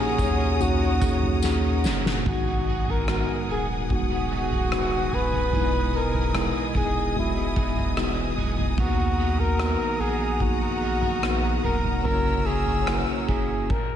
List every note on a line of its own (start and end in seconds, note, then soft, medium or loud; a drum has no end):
0.00 0.15 A#2 medium
0.00 0.59 A#3 loud
0.00 0.17 C#4 soft
0.00 0.60 C#4 medium
0.00 0.18 D#4 soft
0.00 0.60 D#4 medium
0.00 0.61 F#4 loud
0.00 2.28 G4 medium
0.00 0.59 G#4 medium
0.00 0.63 G#4 medium
0.00 0.18 A#4 soft
0.00 2.23 C#5 medium
0.00 2.22 F#5 medium
0.00 2.23 A#5 medium
0.00 2.23 D#6 medium
0.18 1.86 D#2 medium
0.18 0.39 F#3 medium
0.18 0.39 C#4 medium
0.18 0.38 D#4 medium
0.18 0.37 A#4 medium
0.18 kick medium
0.18 floor tom medium
0.18 tambourine soft
0.38 0.80 C#4 soft
0.38 0.80 D#4 soft
0.38 0.78 A#4 soft
0.59 0.99 A#3 medium
0.59 0.99 C#4 medium
0.59 0.99 D#4 medium
0.59 1.00 F#4 medium
0.59 1.86 F#4 medium
0.59 floor tom medium
0.59 tambourine soft
0.80 1.00 C#4 soft
0.80 1.01 D#4 soft
0.80 1.01 A#4 soft
1.01 1.42 F#3 medium
1.01 1.41 A#3 medium
1.01 1.42 C#4 medium
1.01 1.41 C#4 medium
1.01 1.41 D#4 medium
1.01 1.43 D#4 medium
1.01 1.42 G#4 medium
1.01 1.43 A#4 medium
1.01 kick loud
1.01 tambourine medium
1.23 floor tom medium
1.42 1.64 D#3 medium
1.42 1.64 F#3 medium
1.42 2.22 A#3 medium
1.42 2.22 C#4 medium
1.42 1.64 C#4 medium
1.42 2.22 D#4 medium
1.42 1.63 D#4 medium
1.42 2.23 G#4 medium
1.42 1.62 A#4 medium
1.42 snare medium
1.42 tambourine medium
1.63 1.84 C#4 soft
1.63 1.84 D#4 medium
1.63 1.85 A#4 medium
1.84 2.23 F#1 medium
1.84 2.25 F#3 medium
1.84 2.26 C#4 medium
1.84 2.26 D#4 medium
1.84 2.27 A#4 medium
1.84 snare medium
1.84 tambourine soft
2.06 snare medium
2.25 3.25 G#1 medium
2.25 2.47 G#2 medium
2.25 3.46 G#2 medium
2.25 2.47 D#3 medium
2.25 3.46 D#3 medium
2.25 2.47 F#3 medium
2.25 3.04 G#3 medium
2.25 3.04 B3 medium
2.25 2.47 B3 medium
2.25 3.05 D#4 medium
2.25 2.46 D#4 medium
2.25 3.05 F#4 medium
2.25 2.92 F#4 medium
2.25 2.45 G#4 medium
2.25 12.01 G#4 medium
2.25 5.51 F#5 medium
2.25 8.75 G#5 medium
2.25 12.01 D#6 medium
2.25 kick medium
2.25 floor tom loud
2.47 2.66 F#3 soft
2.47 2.67 B3 soft
2.47 2.68 D#4 soft
2.47 2.67 G#4 soft
2.67 2.88 F#3 soft
2.67 2.88 B3 soft
2.67 2.87 D#4 medium
2.67 2.86 G#4 medium
2.87 3.07 F#3 soft
2.87 3.08 B3 soft
2.87 3.08 D#4 soft
2.87 3.08 G#4 soft
2.87 3.51 A#4 medium
2.87 floor tom medium
3.08 3.49 G#2 medium
3.08 3.49 D#3 medium
3.08 3.47 F#3 medium
3.08 3.86 G#3 medium
3.08 3.86 B3 medium
3.08 3.48 B3 medium
3.08 3.86 D#4 medium
3.08 3.49 D#4 medium
3.08 3.87 F#4 medium
3.08 3.49 G#4 medium
3.08 cross-stick medium
3.48 5.09 D#1 medium
3.48 4.10 F#3 soft
3.48 4.10 B3 soft
3.48 4.10 D#4 soft
3.48 4.09 G#4 medium
3.48 3.67 G#4 medium
3.90 4.68 G#3 medium
3.90 4.68 B3 medium
3.90 4.68 D#4 medium
3.90 4.69 F#4 medium
3.90 5.16 F#4 medium
3.90 kick medium
3.90 floor tom soft
4.10 4.29 F#3 soft
4.10 4.29 B3 soft
4.10 4.30 D#4 soft
4.10 4.31 G#4 soft
4.30 4.51 F#3 soft
4.30 4.52 B3 medium
4.30 4.51 D#4 medium
4.30 4.50 G#4 medium
4.51 4.71 F#3 soft
4.51 4.71 B3 soft
4.51 4.72 D#4 soft
4.51 4.72 G#4 soft
4.51 floor tom medium
4.71 5.13 G#2 medium
4.71 5.13 D#3 medium
4.71 5.11 F#3 medium
4.71 5.49 G#3 medium
4.71 5.49 B3 medium
4.71 5.11 B3 medium
4.71 5.49 D#4 medium
4.71 5.12 D#4 medium
4.71 5.50 F#4 medium
4.71 5.13 G#4 medium
4.71 cross-stick medium
5.12 5.51 D#1 medium
5.12 5.33 F#3 soft
5.12 5.32 B3 medium
5.12 5.31 D#4 medium
5.12 5.31 G#4 medium
5.12 5.98 B4 loud
5.12 floor tom soft
5.32 5.53 F#3 soft
5.32 5.52 B3 soft
5.32 5.53 D#4 soft
5.32 5.53 G#4 soft
5.32 floor tom medium
5.52 6.51 E1 medium
5.52 6.71 B2 medium
5.52 5.73 E3 medium
5.52 6.30 G#3 medium
5.52 5.74 G#3 medium
5.52 6.30 B3 medium
5.52 5.74 B3 medium
5.52 6.30 D#4 medium
5.52 5.73 D#4 medium
5.52 6.31 E4 medium
5.52 5.72 G#4 medium
5.52 8.75 D#5 medium
5.52 floor tom medium
5.73 5.93 B3 soft
5.73 5.93 D#4 soft
5.73 5.94 G#4 soft
5.93 6.14 G#3 medium
5.93 6.14 B3 medium
5.93 6.14 D#4 medium
5.93 6.13 G#4 medium
5.93 6.50 A#4 medium
6.14 6.34 B3 soft
6.14 6.35 D#4 soft
6.14 6.34 G#4 soft
6.14 floor tom medium
6.34 6.75 E3 medium
6.34 7.11 G#3 medium
6.34 6.73 G#3 medium
6.34 7.11 B3 medium
6.34 6.74 B3 medium
6.34 7.12 D#4 medium
6.34 6.75 D#4 medium
6.34 7.12 E4 medium
6.34 6.75 G#4 medium
6.34 cross-stick medium
6.74 8.33 E1 medium
6.74 7.36 G#3 soft
6.74 7.36 B3 soft
6.74 7.35 D#4 medium
6.74 7.14 G#4 medium
6.74 7.34 G#4 medium
6.74 kick medium
6.74 floor tom medium
7.15 7.92 G#3 medium
7.15 7.93 B3 medium
7.15 8.35 E4 medium
7.15 7.93 F#4 medium
7.15 7.93 D#5 medium
7.15 floor tom medium
7.35 7.55 B3 soft
7.35 7.56 D#4 soft
7.35 7.56 G#4 soft
7.55 7.76 G#3 soft
7.55 7.76 B3 soft
7.55 7.76 D#4 medium
7.55 7.75 G#4 medium
7.55 kick medium
7.76 7.96 B3 soft
7.76 7.97 D#4 soft
7.76 7.97 G#4 soft
7.76 floor tom medium
7.96 8.37 E3 medium
7.96 8.74 G#3 medium
7.96 8.36 G#3 medium
7.96 8.74 B3 medium
7.96 8.36 B3 medium
7.96 8.75 F#4 medium
7.96 8.38 G#4 medium
7.96 8.74 D#5 medium
7.96 cross-stick medium
8.37 8.79 E1 medium
8.37 8.57 G#3 medium
8.37 8.58 B3 medium
8.37 8.57 D#4 medium
8.37 8.56 G#4 medium
8.37 floor tom medium
8.57 8.77 B3 soft
8.57 8.78 D#4 soft
8.57 8.78 G#4 soft
8.57 floor tom medium
8.77 9.75 D#2 loud
8.77 8.98 D#3 medium
8.77 9.96 D#3 medium
8.77 8.98 F#3 medium
8.77 9.55 A#3 medium
8.77 9.55 B3 medium
8.77 8.99 B3 medium
8.77 9.55 D#4 medium
8.77 8.98 D#4 medium
8.77 9.56 F#4 medium
8.77 9.41 F#4 medium
8.77 8.97 A#4 medium
8.77 13.66 F#5 medium
8.77 13.66 A#5 medium
8.77 kick loud
8.77 floor tom loud
8.98 9.18 B3 soft
8.98 9.18 D#4 medium
8.98 9.18 A#4 soft
9.18 9.39 F#3 medium
9.18 9.39 B3 medium
9.18 9.38 D#4 medium
9.18 9.37 A#4 medium
9.38 9.59 B3 soft
9.38 9.59 D#4 soft
9.38 9.59 A#4 soft
9.38 10.02 A#4 loud
9.38 floor tom medium
9.59 10.00 D#3 medium
9.59 9.98 F#3 medium
9.59 10.36 A#3 medium
9.59 10.36 B3 medium
9.59 9.98 B3 medium
9.59 10.36 D#4 medium
9.59 9.99 D#4 medium
9.59 10.37 F#4 medium
9.59 10.00 A#4 medium
9.59 cross-stick loud
9.99 11.59 A#1 medium
9.99 10.60 F#3 soft
9.99 10.61 B3 medium
9.99 10.60 D#4 medium
9.99 10.43 G#4 medium
9.99 10.59 A#4 medium
10.40 11.18 A#3 medium
10.40 11.18 B3 medium
10.40 11.19 D#4 medium
10.40 11.63 F#4 medium
10.40 11.19 G#4 medium
10.40 kick medium
10.40 floor tom medium
10.60 10.80 B3 soft
10.60 10.81 D#4 soft
10.60 10.81 A#4 soft
10.81 11.01 F#3 soft
10.81 11.02 B3 medium
10.81 11.01 D#4 medium
10.81 11.00 A#4 medium
11.01 11.21 B3 soft
11.01 11.21 D#4 soft
11.01 11.22 A#4 soft
11.01 floor tom medium
11.22 11.63 D#3 medium
11.22 11.62 F#3 medium
11.22 12.00 A#3 medium
11.22 12.01 B3 medium
11.22 11.63 B3 medium
11.22 11.63 D#4 medium
11.22 12.01 D#4 medium
11.22 12.01 F#4 medium
11.22 11.64 A#4 medium
11.22 cross-stick medium
11.63 12.02 E1 medium
11.63 12.03 F#3 soft
11.63 12.05 B3 medium
11.63 12.05 D#4 medium
11.63 12.02 A#4 medium
11.63 12.04 A#4 medium
11.63 floor tom medium
11.85 floor tom medium
12.04 13.04 F#1 loud
12.04 13.24 C#3 medium
12.04 12.25 F#3 medium
12.04 12.83 A#3 medium
12.04 12.83 C#4 medium
12.04 12.25 C#4 medium
12.04 12.83 E4 medium
12.04 12.25 E4 medium
12.04 12.83 F#4 medium
12.04 12.47 A#4 medium
12.04 12.23 A#4 medium
12.04 13.68 C#5 medium
12.04 13.68 E6 medium
12.04 floor tom medium
12.25 12.44 C#4 soft
12.25 12.45 E4 soft
12.25 12.46 A#4 soft
12.45 12.66 F#3 medium
12.45 12.66 C#4 medium
12.45 12.65 E4 medium
12.45 13.01 G#4 medium
12.45 12.64 A#4 medium
12.65 12.86 C#4 soft
12.65 12.86 E4 soft
12.65 12.86 A#4 medium
12.65 floor tom medium
12.86 13.27 F#3 medium
12.86 13.65 A#3 medium
12.86 13.66 C#4 medium
12.86 13.27 C#4 medium
12.86 13.28 E4 medium
12.86 13.66 E4 medium
12.86 13.66 F#4 medium
12.86 13.29 A#4 medium
12.86 cross-stick loud
13.28 13.68 F#1 medium
13.28 13.70 F#3 soft
13.28 13.70 C#4 medium
13.28 13.70 E4 medium
13.28 13.72 G#4 medium
13.28 13.71 A#4 medium
13.28 kick medium
13.70 13.96 A#4 medium
13.70 kick medium
13.70 crash medium